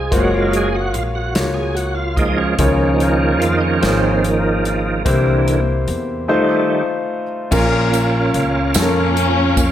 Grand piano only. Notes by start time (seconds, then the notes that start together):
Already playing: G#3 D#4 F4 C5
0.11 A#3 F4 F#4 C5
0.19 C#5
1.35 A#3 F4 F#4 C#5
2.59 C#3 A#3 F4 G#4 C#5
3.82 A#3 F4 G#4 C#5
5.05 C3 A#3 E4 G4 C5
6.28 A3 D#4 F4 C5
7.51 A#2 C#4 F4 A#4
8.75 C#4 F4 A4
8.83 A#4